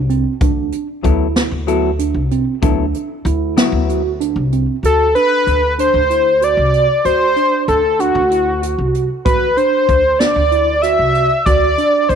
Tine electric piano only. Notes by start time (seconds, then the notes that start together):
0.10 C4
0.42 D4
1.05 E4
1.68 F#4
1.99 D4
2.32 C4
2.63 D4
3.26 E4
3.89 F#4
4.21 D4
4.53 C4
4.84 F#4
5.16 D4
5.79 D4
6.10 E4
6.41 F#4
7.05 F#4
7.36 D4
7.99 D4
8.31 E4
8.62 F#4
9.25 F#4
9.57 D4
10.20 D4
10.52 E4
10.83 F#4
11.47 F#4
11.78 D4